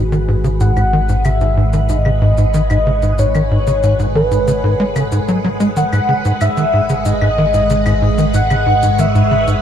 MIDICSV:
0, 0, Header, 1, 6, 480
1, 0, Start_track
1, 0, Key_signature, 5, "minor"
1, 0, Tempo, 645161
1, 450, Time_signature, 4, 2, 24, 8
1, 7157, End_track
2, 0, Start_track
2, 0, Title_t, "Analog synth lead"
2, 0, Program_c, 0, 81
2, 0, Note_on_c, 0, 66, 98
2, 210, Note_off_c, 0, 66, 0
2, 451, Note_on_c, 0, 78, 123
2, 931, Note_on_c, 0, 76, 108
2, 942, Note_off_c, 0, 78, 0
2, 1412, Note_on_c, 0, 75, 110
2, 1424, Note_off_c, 0, 76, 0
2, 2373, Note_on_c, 0, 73, 112
2, 2385, Note_off_c, 0, 75, 0
2, 3088, Note_off_c, 0, 73, 0
2, 3093, Note_on_c, 0, 71, 94
2, 3725, Note_off_c, 0, 71, 0
2, 3725, Note_on_c, 0, 69, 94
2, 4022, Note_off_c, 0, 69, 0
2, 4292, Note_on_c, 0, 78, 120
2, 4741, Note_off_c, 0, 78, 0
2, 4772, Note_on_c, 0, 76, 108
2, 5251, Note_on_c, 0, 75, 116
2, 5262, Note_off_c, 0, 76, 0
2, 6211, Note_off_c, 0, 75, 0
2, 6214, Note_on_c, 0, 78, 115
2, 6697, Note_on_c, 0, 76, 109
2, 6708, Note_off_c, 0, 78, 0
2, 7157, Note_off_c, 0, 76, 0
2, 7157, End_track
3, 0, Start_track
3, 0, Title_t, "String machine"
3, 0, Program_c, 1, 50
3, 0, Note_on_c, 1, 56, 75
3, 0, Note_on_c, 1, 68, 74
3, 0, Note_on_c, 1, 71, 74
3, 0, Note_on_c, 1, 78, 71
3, 6459, Note_on_c, 1, 73, 86
3, 7157, Note_off_c, 1, 56, 0
3, 7157, Note_off_c, 1, 68, 0
3, 7157, Note_off_c, 1, 71, 0
3, 7157, Note_off_c, 1, 73, 0
3, 7157, Note_off_c, 1, 78, 0
3, 7157, End_track
4, 0, Start_track
4, 0, Title_t, "Analog synth bass"
4, 0, Program_c, 2, 38
4, 90, Note_on_c, 2, 51, 78
4, 145, Note_off_c, 2, 51, 0
4, 210, Note_on_c, 2, 44, 73
4, 265, Note_off_c, 2, 44, 0
4, 329, Note_on_c, 2, 49, 74
4, 362, Note_off_c, 2, 49, 0
4, 450, Note_on_c, 2, 44, 82
4, 533, Note_off_c, 2, 44, 0
4, 569, Note_on_c, 2, 44, 74
4, 625, Note_off_c, 2, 44, 0
4, 693, Note_on_c, 2, 51, 78
4, 747, Note_off_c, 2, 51, 0
4, 813, Note_on_c, 2, 44, 72
4, 867, Note_off_c, 2, 44, 0
4, 932, Note_on_c, 2, 49, 81
4, 964, Note_off_c, 2, 49, 0
4, 1050, Note_on_c, 2, 44, 76
4, 1133, Note_off_c, 2, 44, 0
4, 1170, Note_on_c, 2, 44, 70
4, 1225, Note_off_c, 2, 44, 0
4, 1290, Note_on_c, 2, 51, 75
4, 1345, Note_off_c, 2, 51, 0
4, 1409, Note_on_c, 2, 44, 76
4, 1465, Note_off_c, 2, 44, 0
4, 1530, Note_on_c, 2, 49, 76
4, 1563, Note_off_c, 2, 49, 0
4, 1649, Note_on_c, 2, 44, 78
4, 1732, Note_off_c, 2, 44, 0
4, 1770, Note_on_c, 2, 44, 77
4, 1825, Note_off_c, 2, 44, 0
4, 1891, Note_on_c, 2, 51, 83
4, 1946, Note_off_c, 2, 51, 0
4, 2012, Note_on_c, 2, 44, 79
4, 2066, Note_off_c, 2, 44, 0
4, 2133, Note_on_c, 2, 49, 75
4, 2165, Note_off_c, 2, 49, 0
4, 2252, Note_on_c, 2, 44, 72
4, 2334, Note_off_c, 2, 44, 0
4, 2372, Note_on_c, 2, 44, 79
4, 2426, Note_off_c, 2, 44, 0
4, 2493, Note_on_c, 2, 51, 74
4, 2547, Note_off_c, 2, 51, 0
4, 2614, Note_on_c, 2, 44, 73
4, 2667, Note_off_c, 2, 44, 0
4, 2733, Note_on_c, 2, 49, 75
4, 2764, Note_off_c, 2, 49, 0
4, 2852, Note_on_c, 2, 44, 77
4, 2934, Note_off_c, 2, 44, 0
4, 2971, Note_on_c, 2, 44, 77
4, 3026, Note_off_c, 2, 44, 0
4, 3089, Note_on_c, 2, 51, 70
4, 3145, Note_off_c, 2, 51, 0
4, 3208, Note_on_c, 2, 44, 75
4, 3264, Note_off_c, 2, 44, 0
4, 3329, Note_on_c, 2, 49, 76
4, 3363, Note_off_c, 2, 49, 0
4, 3449, Note_on_c, 2, 44, 75
4, 3533, Note_off_c, 2, 44, 0
4, 3569, Note_on_c, 2, 56, 80
4, 3603, Note_off_c, 2, 56, 0
4, 3688, Note_on_c, 2, 49, 77
4, 3744, Note_off_c, 2, 49, 0
4, 3809, Note_on_c, 2, 44, 84
4, 3865, Note_off_c, 2, 44, 0
4, 3931, Note_on_c, 2, 54, 74
4, 4013, Note_off_c, 2, 54, 0
4, 4050, Note_on_c, 2, 54, 71
4, 4083, Note_off_c, 2, 54, 0
4, 4167, Note_on_c, 2, 56, 75
4, 4224, Note_off_c, 2, 56, 0
4, 4289, Note_on_c, 2, 51, 77
4, 4345, Note_off_c, 2, 51, 0
4, 4409, Note_on_c, 2, 44, 75
4, 4465, Note_off_c, 2, 44, 0
4, 4527, Note_on_c, 2, 49, 76
4, 4562, Note_off_c, 2, 49, 0
4, 4650, Note_on_c, 2, 44, 72
4, 4705, Note_off_c, 2, 44, 0
4, 4769, Note_on_c, 2, 44, 78
4, 4825, Note_off_c, 2, 44, 0
4, 4889, Note_on_c, 2, 51, 73
4, 4945, Note_off_c, 2, 51, 0
4, 5010, Note_on_c, 2, 44, 73
4, 5065, Note_off_c, 2, 44, 0
4, 5130, Note_on_c, 2, 49, 72
4, 5163, Note_off_c, 2, 49, 0
4, 5249, Note_on_c, 2, 44, 78
4, 5305, Note_off_c, 2, 44, 0
4, 5369, Note_on_c, 2, 44, 79
4, 5425, Note_off_c, 2, 44, 0
4, 5492, Note_on_c, 2, 51, 77
4, 5546, Note_off_c, 2, 51, 0
4, 5609, Note_on_c, 2, 44, 73
4, 5665, Note_off_c, 2, 44, 0
4, 5731, Note_on_c, 2, 49, 82
4, 5764, Note_off_c, 2, 49, 0
4, 5848, Note_on_c, 2, 44, 77
4, 5904, Note_off_c, 2, 44, 0
4, 5967, Note_on_c, 2, 44, 77
4, 6024, Note_off_c, 2, 44, 0
4, 6086, Note_on_c, 2, 51, 75
4, 6143, Note_off_c, 2, 51, 0
4, 6206, Note_on_c, 2, 44, 80
4, 6263, Note_off_c, 2, 44, 0
4, 6329, Note_on_c, 2, 49, 79
4, 6363, Note_off_c, 2, 49, 0
4, 6446, Note_on_c, 2, 44, 74
4, 6503, Note_off_c, 2, 44, 0
4, 6568, Note_on_c, 2, 44, 76
4, 6624, Note_off_c, 2, 44, 0
4, 6688, Note_on_c, 2, 51, 82
4, 6744, Note_off_c, 2, 51, 0
4, 6808, Note_on_c, 2, 44, 79
4, 6864, Note_off_c, 2, 44, 0
4, 6928, Note_on_c, 2, 49, 78
4, 6962, Note_off_c, 2, 49, 0
4, 7049, Note_on_c, 2, 44, 76
4, 7105, Note_off_c, 2, 44, 0
4, 7157, End_track
5, 0, Start_track
5, 0, Title_t, "Synth drone"
5, 0, Program_c, 3, 95
5, 0, Note_on_c, 3, 32, 89
5, 4265, Note_off_c, 3, 32, 0
5, 4289, Note_on_c, 3, 32, 88
5, 7157, Note_off_c, 3, 32, 0
5, 7157, End_track
6, 0, Start_track
6, 0, Title_t, "Drums"
6, 92, Note_on_c, 9, 82, 36
6, 166, Note_off_c, 9, 82, 0
6, 331, Note_on_c, 9, 82, 52
6, 405, Note_off_c, 9, 82, 0
6, 450, Note_on_c, 9, 82, 66
6, 524, Note_off_c, 9, 82, 0
6, 571, Note_on_c, 9, 75, 53
6, 571, Note_on_c, 9, 82, 36
6, 645, Note_off_c, 9, 75, 0
6, 645, Note_off_c, 9, 82, 0
6, 810, Note_on_c, 9, 82, 54
6, 885, Note_off_c, 9, 82, 0
6, 929, Note_on_c, 9, 75, 69
6, 929, Note_on_c, 9, 82, 69
6, 1003, Note_off_c, 9, 75, 0
6, 1003, Note_off_c, 9, 82, 0
6, 1048, Note_on_c, 9, 82, 39
6, 1122, Note_off_c, 9, 82, 0
6, 1288, Note_on_c, 9, 82, 57
6, 1362, Note_off_c, 9, 82, 0
6, 1407, Note_on_c, 9, 82, 68
6, 1481, Note_off_c, 9, 82, 0
6, 1527, Note_on_c, 9, 75, 53
6, 1601, Note_off_c, 9, 75, 0
6, 1767, Note_on_c, 9, 82, 53
6, 1842, Note_off_c, 9, 82, 0
6, 1889, Note_on_c, 9, 82, 66
6, 1964, Note_off_c, 9, 82, 0
6, 2009, Note_on_c, 9, 75, 67
6, 2009, Note_on_c, 9, 82, 36
6, 2084, Note_off_c, 9, 75, 0
6, 2084, Note_off_c, 9, 82, 0
6, 2249, Note_on_c, 9, 82, 51
6, 2324, Note_off_c, 9, 82, 0
6, 2369, Note_on_c, 9, 82, 64
6, 2443, Note_off_c, 9, 82, 0
6, 2490, Note_on_c, 9, 75, 50
6, 2490, Note_on_c, 9, 82, 36
6, 2565, Note_off_c, 9, 75, 0
6, 2565, Note_off_c, 9, 82, 0
6, 2731, Note_on_c, 9, 82, 53
6, 2805, Note_off_c, 9, 82, 0
6, 2851, Note_on_c, 9, 82, 63
6, 2925, Note_off_c, 9, 82, 0
6, 2971, Note_on_c, 9, 82, 36
6, 3046, Note_off_c, 9, 82, 0
6, 3210, Note_on_c, 9, 82, 55
6, 3284, Note_off_c, 9, 82, 0
6, 3330, Note_on_c, 9, 82, 63
6, 3405, Note_off_c, 9, 82, 0
6, 3689, Note_on_c, 9, 75, 52
6, 3689, Note_on_c, 9, 82, 53
6, 3763, Note_off_c, 9, 75, 0
6, 3763, Note_off_c, 9, 82, 0
6, 3808, Note_on_c, 9, 82, 65
6, 3883, Note_off_c, 9, 82, 0
6, 3929, Note_on_c, 9, 82, 36
6, 4003, Note_off_c, 9, 82, 0
6, 4168, Note_on_c, 9, 82, 51
6, 4243, Note_off_c, 9, 82, 0
6, 4289, Note_on_c, 9, 82, 64
6, 4363, Note_off_c, 9, 82, 0
6, 4408, Note_on_c, 9, 75, 51
6, 4408, Note_on_c, 9, 82, 35
6, 4483, Note_off_c, 9, 75, 0
6, 4483, Note_off_c, 9, 82, 0
6, 4649, Note_on_c, 9, 82, 52
6, 4723, Note_off_c, 9, 82, 0
6, 4768, Note_on_c, 9, 75, 63
6, 4768, Note_on_c, 9, 82, 63
6, 4843, Note_off_c, 9, 75, 0
6, 4843, Note_off_c, 9, 82, 0
6, 4889, Note_on_c, 9, 82, 36
6, 4963, Note_off_c, 9, 82, 0
6, 5129, Note_on_c, 9, 82, 54
6, 5203, Note_off_c, 9, 82, 0
6, 5247, Note_on_c, 9, 82, 64
6, 5322, Note_off_c, 9, 82, 0
6, 5368, Note_on_c, 9, 75, 52
6, 5442, Note_off_c, 9, 75, 0
6, 5608, Note_on_c, 9, 82, 50
6, 5682, Note_off_c, 9, 82, 0
6, 5727, Note_on_c, 9, 82, 65
6, 5801, Note_off_c, 9, 82, 0
6, 5847, Note_on_c, 9, 75, 63
6, 5847, Note_on_c, 9, 82, 36
6, 5921, Note_off_c, 9, 75, 0
6, 5921, Note_off_c, 9, 82, 0
6, 6087, Note_on_c, 9, 82, 51
6, 6161, Note_off_c, 9, 82, 0
6, 6205, Note_on_c, 9, 82, 58
6, 6279, Note_off_c, 9, 82, 0
6, 6327, Note_on_c, 9, 75, 50
6, 6327, Note_on_c, 9, 82, 32
6, 6402, Note_off_c, 9, 75, 0
6, 6402, Note_off_c, 9, 82, 0
6, 6567, Note_on_c, 9, 82, 51
6, 6642, Note_off_c, 9, 82, 0
6, 6687, Note_on_c, 9, 82, 58
6, 6761, Note_off_c, 9, 82, 0
6, 6809, Note_on_c, 9, 82, 34
6, 6884, Note_off_c, 9, 82, 0
6, 7049, Note_on_c, 9, 82, 50
6, 7124, Note_off_c, 9, 82, 0
6, 7157, End_track
0, 0, End_of_file